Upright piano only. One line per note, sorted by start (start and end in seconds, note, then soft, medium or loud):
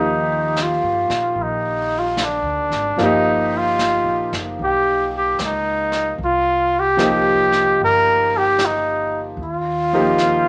0.00 3.00 D#3 soft
0.00 2.96 F3 soft
0.00 2.97 A#3 soft
0.00 3.01 G4 soft
2.98 6.18 F3 soft
2.98 6.19 A#3 soft
2.98 6.19 D#4 soft
3.03 6.21 G4 soft
6.97 9.37 F3 soft
6.97 9.38 A#3 soft
6.97 9.39 D#4 soft
7.02 9.40 G4 medium
9.93 10.48 F3 soft
9.93 10.48 A#3 soft
9.93 10.48 D#4 soft
9.93 10.48 G4 medium